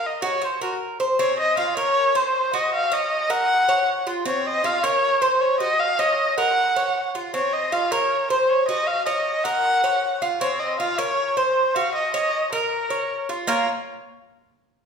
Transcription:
Already playing: A#4
0.06 D#5
0.22 F#4 C#5
0.42 C5 C#5
0.61 F#4 A#4
1.00 C5
1.19 C4 C#5
1.39 D#5
1.57 F4 F5
1.77 A#4 C#5
2.15 C5
2.53 F#4 D#5
2.74 F5
2.92 C#5 D#5
3.30 A#4 F#5
3.69 C#5
4.07 F4
4.25 C4 C#5
4.46 D#5
4.64 F4 F5
4.84 A#4 C#5
5.22 C5
5.41 C#5
5.60 F#4 D#5
5.80 F5
5.99 C#5 D#5
6.37 A#4 F#5
6.76 C#5
7.15 F4
7.34 C4 C#5
7.53 D#5
7.72 F4 F5
7.91 A#4 C#5
8.30 C5
8.49 C#5
8.68 F#4 D#5
8.87 F5
9.06 C#5 D#5
9.44 A#4 F#5
9.84 C#5
10.22 F4
10.40 C4 C#5
10.60 D#5
10.79 F4 F5
10.98 A#4 C#5
11.37 C5
11.75 F#4 F5
11.95 D#5
12.14 C#5 D#5
12.53 A#4
12.90 C#5
13.29 F4
13.47 A#3 F4 A#4 C#5

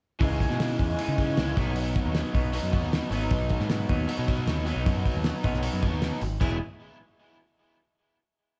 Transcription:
0.19 C#2 C#3 E3 G#3 C#4 D#4, kick, open hi-hat
0.40 kick, open hi-hat
0.50 B2, snare
0.60 snare, open hi-hat
0.79 E2, kick, open hi-hat
0.97 E3 G#3 D#4, open hi-hat
1.08 C#3
1.17 C#3 E3 G#3 C#4, kick, open hi-hat
1.35 C#2 C#3 E3 G#3 C#4, snare, open hi-hat
1.55 B1 B2 F#3 B3 D#4, kick, open hi-hat
1.60 D#4
1.76 open hi-hat
1.96 kick, open hi-hat
2.06 D#2
2.15 snare, open hi-hat
2.33 B1 F#3 B3 D#4, kick, open hi-hat
2.52 B2 F#3 B3 D#4, open hi-hat
2.63 F#2
2.71 B2 F#3 B3 D#4, kick, open hi-hat
2.82 D#2
2.93 snare, open hi-hat
3.10 G#1 B2 F#3 B3 D#4, open hi-hat
3.15 D#4
3.31 B1, kick, open hi-hat
3.49 kick, open hi-hat
3.60 G#2, snare
3.70 snare, open hi-hat
3.89 D#2 F#3 B3 D#4, kick, open hi-hat
4.07 B2 F#3 B3 D#4, open hi-hat
4.19 B2
4.26 B2 F#3 B3 D#4, kick, open hi-hat
4.47 D#2, snare, open hi-hat
4.65 B2 F#3 B3 D#4, open hi-hat
4.70 D#4
4.76 B1
4.86 F#2, kick, open hi-hat
5.05 kick, open hi-hat
5.14 D#2
5.24 snare, open hi-hat
5.43 B1 F#3 B3 D#4, kick, open hi-hat
5.54 snare
5.62 B2 F#3 B3 D#4, open hi-hat
5.73 F#2
5.82 B2 F#3 B3 D#4, kick, open hi-hat
5.93 D#2
6.02 snare, open hi-hat
6.21 G#1, open hi-hat
6.40 E1 E3 F#3 G#3 B3 E4 G#4, kick, crash

